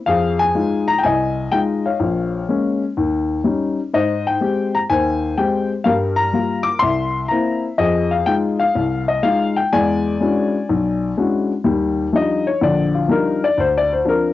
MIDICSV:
0, 0, Header, 1, 2, 480
1, 0, Start_track
1, 0, Key_signature, -3, "major"
1, 0, Tempo, 482315
1, 62, Time_signature, 4, 2, 24, 8
1, 14263, End_track
2, 0, Start_track
2, 0, Title_t, "Upright piano"
2, 0, Program_c, 0, 0
2, 63, Note_on_c, 0, 77, 90
2, 71, Note_on_c, 0, 41, 68
2, 89, Note_on_c, 0, 68, 68
2, 369, Note_off_c, 0, 77, 0
2, 391, Note_on_c, 0, 80, 99
2, 485, Note_off_c, 0, 41, 0
2, 544, Note_on_c, 0, 56, 48
2, 553, Note_on_c, 0, 63, 44
2, 554, Note_on_c, 0, 65, 51
2, 838, Note_off_c, 0, 80, 0
2, 871, Note_on_c, 0, 82, 96
2, 888, Note_off_c, 0, 56, 0
2, 892, Note_off_c, 0, 63, 0
2, 892, Note_off_c, 0, 65, 0
2, 978, Note_on_c, 0, 79, 73
2, 981, Note_off_c, 0, 82, 0
2, 995, Note_off_c, 0, 68, 0
2, 1022, Note_off_c, 0, 79, 0
2, 1027, Note_on_c, 0, 80, 87
2, 1040, Note_on_c, 0, 36, 67
2, 1052, Note_on_c, 0, 75, 71
2, 1450, Note_off_c, 0, 36, 0
2, 1508, Note_on_c, 0, 79, 88
2, 1511, Note_on_c, 0, 56, 51
2, 1511, Note_on_c, 0, 63, 45
2, 1517, Note_on_c, 0, 65, 51
2, 1518, Note_off_c, 0, 80, 0
2, 1582, Note_off_c, 0, 79, 0
2, 1848, Note_on_c, 0, 77, 63
2, 1850, Note_off_c, 0, 56, 0
2, 1850, Note_on_c, 0, 73, 50
2, 1851, Note_off_c, 0, 63, 0
2, 1853, Note_off_c, 0, 65, 0
2, 1956, Note_off_c, 0, 75, 0
2, 1987, Note_on_c, 0, 34, 64
2, 2403, Note_off_c, 0, 34, 0
2, 2430, Note_off_c, 0, 77, 0
2, 2474, Note_on_c, 0, 56, 45
2, 2476, Note_on_c, 0, 58, 42
2, 2481, Note_on_c, 0, 61, 55
2, 2760, Note_off_c, 0, 73, 0
2, 2812, Note_off_c, 0, 56, 0
2, 2813, Note_off_c, 0, 58, 0
2, 2815, Note_off_c, 0, 61, 0
2, 2957, Note_on_c, 0, 39, 64
2, 3368, Note_off_c, 0, 39, 0
2, 3425, Note_on_c, 0, 55, 44
2, 3428, Note_on_c, 0, 61, 41
2, 3430, Note_on_c, 0, 63, 51
2, 3767, Note_off_c, 0, 55, 0
2, 3768, Note_off_c, 0, 61, 0
2, 3769, Note_off_c, 0, 63, 0
2, 3917, Note_on_c, 0, 44, 64
2, 3921, Note_on_c, 0, 72, 64
2, 3924, Note_on_c, 0, 75, 83
2, 4249, Note_on_c, 0, 79, 78
2, 4251, Note_off_c, 0, 75, 0
2, 4327, Note_off_c, 0, 44, 0
2, 4387, Note_on_c, 0, 56, 47
2, 4389, Note_on_c, 0, 60, 42
2, 4399, Note_on_c, 0, 67, 52
2, 4723, Note_on_c, 0, 82, 86
2, 4728, Note_off_c, 0, 56, 0
2, 4729, Note_off_c, 0, 60, 0
2, 4733, Note_off_c, 0, 79, 0
2, 4734, Note_off_c, 0, 67, 0
2, 4773, Note_off_c, 0, 82, 0
2, 4830, Note_off_c, 0, 72, 0
2, 4872, Note_on_c, 0, 80, 96
2, 4874, Note_on_c, 0, 39, 64
2, 4889, Note_on_c, 0, 72, 63
2, 5286, Note_off_c, 0, 39, 0
2, 5349, Note_on_c, 0, 56, 49
2, 5349, Note_on_c, 0, 79, 72
2, 5354, Note_on_c, 0, 60, 47
2, 5359, Note_on_c, 0, 67, 52
2, 5360, Note_off_c, 0, 80, 0
2, 5651, Note_off_c, 0, 79, 0
2, 5689, Note_off_c, 0, 56, 0
2, 5691, Note_off_c, 0, 60, 0
2, 5694, Note_off_c, 0, 67, 0
2, 5794, Note_off_c, 0, 72, 0
2, 5813, Note_on_c, 0, 77, 85
2, 5827, Note_on_c, 0, 43, 66
2, 5829, Note_on_c, 0, 55, 63
2, 5833, Note_on_c, 0, 70, 63
2, 5888, Note_off_c, 0, 77, 0
2, 6131, Note_on_c, 0, 82, 98
2, 6242, Note_off_c, 0, 43, 0
2, 6243, Note_off_c, 0, 55, 0
2, 6301, Note_on_c, 0, 55, 44
2, 6311, Note_on_c, 0, 58, 44
2, 6312, Note_on_c, 0, 65, 48
2, 6598, Note_on_c, 0, 86, 96
2, 6635, Note_off_c, 0, 82, 0
2, 6645, Note_off_c, 0, 55, 0
2, 6650, Note_off_c, 0, 58, 0
2, 6650, Note_off_c, 0, 65, 0
2, 6746, Note_off_c, 0, 70, 0
2, 6753, Note_off_c, 0, 86, 0
2, 6759, Note_on_c, 0, 84, 96
2, 6790, Note_on_c, 0, 36, 61
2, 6798, Note_on_c, 0, 76, 65
2, 7203, Note_off_c, 0, 36, 0
2, 7215, Note_off_c, 0, 84, 0
2, 7248, Note_on_c, 0, 82, 77
2, 7273, Note_on_c, 0, 58, 50
2, 7273, Note_on_c, 0, 60, 45
2, 7278, Note_on_c, 0, 64, 52
2, 7560, Note_off_c, 0, 82, 0
2, 7611, Note_off_c, 0, 58, 0
2, 7611, Note_off_c, 0, 60, 0
2, 7613, Note_off_c, 0, 64, 0
2, 7709, Note_off_c, 0, 76, 0
2, 7743, Note_on_c, 0, 41, 68
2, 7744, Note_on_c, 0, 75, 90
2, 7761, Note_on_c, 0, 68, 62
2, 8072, Note_on_c, 0, 77, 73
2, 8081, Note_off_c, 0, 75, 0
2, 8160, Note_off_c, 0, 41, 0
2, 8211, Note_off_c, 0, 77, 0
2, 8222, Note_on_c, 0, 79, 91
2, 8226, Note_on_c, 0, 56, 50
2, 8231, Note_on_c, 0, 63, 48
2, 8235, Note_on_c, 0, 65, 57
2, 8296, Note_off_c, 0, 79, 0
2, 8554, Note_on_c, 0, 77, 86
2, 8567, Note_off_c, 0, 56, 0
2, 8570, Note_off_c, 0, 63, 0
2, 8572, Note_off_c, 0, 65, 0
2, 8671, Note_off_c, 0, 68, 0
2, 8711, Note_on_c, 0, 36, 65
2, 8998, Note_off_c, 0, 77, 0
2, 9039, Note_on_c, 0, 75, 79
2, 9124, Note_off_c, 0, 36, 0
2, 9185, Note_on_c, 0, 56, 53
2, 9187, Note_on_c, 0, 77, 94
2, 9189, Note_off_c, 0, 75, 0
2, 9191, Note_on_c, 0, 63, 47
2, 9193, Note_on_c, 0, 65, 53
2, 9520, Note_on_c, 0, 79, 82
2, 9523, Note_off_c, 0, 77, 0
2, 9527, Note_off_c, 0, 56, 0
2, 9530, Note_off_c, 0, 63, 0
2, 9531, Note_off_c, 0, 65, 0
2, 9670, Note_off_c, 0, 79, 0
2, 9679, Note_on_c, 0, 40, 69
2, 9680, Note_on_c, 0, 56, 64
2, 9680, Note_on_c, 0, 80, 95
2, 9682, Note_on_c, 0, 74, 75
2, 10089, Note_off_c, 0, 40, 0
2, 10090, Note_off_c, 0, 56, 0
2, 10156, Note_on_c, 0, 56, 49
2, 10158, Note_on_c, 0, 61, 44
2, 10161, Note_on_c, 0, 62, 42
2, 10162, Note_on_c, 0, 64, 46
2, 10167, Note_on_c, 0, 66, 52
2, 10493, Note_off_c, 0, 56, 0
2, 10494, Note_off_c, 0, 61, 0
2, 10495, Note_off_c, 0, 62, 0
2, 10496, Note_off_c, 0, 64, 0
2, 10498, Note_off_c, 0, 66, 0
2, 10644, Note_on_c, 0, 35, 68
2, 11052, Note_off_c, 0, 35, 0
2, 11071, Note_off_c, 0, 80, 0
2, 11072, Note_off_c, 0, 74, 0
2, 11119, Note_on_c, 0, 56, 51
2, 11120, Note_on_c, 0, 61, 42
2, 11122, Note_on_c, 0, 62, 45
2, 11122, Note_on_c, 0, 64, 41
2, 11124, Note_on_c, 0, 66, 53
2, 11455, Note_off_c, 0, 56, 0
2, 11455, Note_off_c, 0, 61, 0
2, 11456, Note_off_c, 0, 62, 0
2, 11456, Note_off_c, 0, 64, 0
2, 11457, Note_off_c, 0, 66, 0
2, 11587, Note_on_c, 0, 55, 63
2, 11589, Note_on_c, 0, 39, 63
2, 12003, Note_off_c, 0, 55, 0
2, 12004, Note_off_c, 0, 39, 0
2, 12067, Note_on_c, 0, 53, 46
2, 12069, Note_on_c, 0, 62, 42
2, 12073, Note_on_c, 0, 55, 42
2, 12077, Note_on_c, 0, 63, 49
2, 12098, Note_on_c, 0, 75, 79
2, 12400, Note_off_c, 0, 75, 0
2, 12409, Note_off_c, 0, 53, 0
2, 12409, Note_on_c, 0, 73, 78
2, 12410, Note_off_c, 0, 62, 0
2, 12412, Note_off_c, 0, 55, 0
2, 12414, Note_off_c, 0, 63, 0
2, 12546, Note_off_c, 0, 73, 0
2, 12551, Note_on_c, 0, 50, 67
2, 12553, Note_on_c, 0, 34, 63
2, 12570, Note_on_c, 0, 74, 81
2, 12876, Note_off_c, 0, 74, 0
2, 12884, Note_on_c, 0, 65, 63
2, 12966, Note_off_c, 0, 50, 0
2, 12967, Note_off_c, 0, 34, 0
2, 13016, Note_on_c, 0, 53, 49
2, 13023, Note_on_c, 0, 55, 44
2, 13024, Note_off_c, 0, 65, 0
2, 13027, Note_on_c, 0, 62, 43
2, 13030, Note_on_c, 0, 63, 55
2, 13052, Note_on_c, 0, 70, 76
2, 13357, Note_off_c, 0, 70, 0
2, 13364, Note_off_c, 0, 53, 0
2, 13368, Note_off_c, 0, 55, 0
2, 13370, Note_off_c, 0, 62, 0
2, 13371, Note_off_c, 0, 63, 0
2, 13376, Note_on_c, 0, 74, 82
2, 13509, Note_on_c, 0, 38, 62
2, 13511, Note_off_c, 0, 74, 0
2, 13536, Note_on_c, 0, 72, 81
2, 13675, Note_off_c, 0, 72, 0
2, 13709, Note_on_c, 0, 74, 85
2, 13842, Note_off_c, 0, 74, 0
2, 13861, Note_on_c, 0, 72, 62
2, 13925, Note_off_c, 0, 38, 0
2, 13980, Note_on_c, 0, 53, 45
2, 13981, Note_on_c, 0, 60, 40
2, 13987, Note_on_c, 0, 62, 55
2, 13998, Note_off_c, 0, 72, 0
2, 14021, Note_on_c, 0, 70, 76
2, 14263, Note_off_c, 0, 53, 0
2, 14263, Note_off_c, 0, 60, 0
2, 14263, Note_off_c, 0, 62, 0
2, 14263, Note_off_c, 0, 70, 0
2, 14263, End_track
0, 0, End_of_file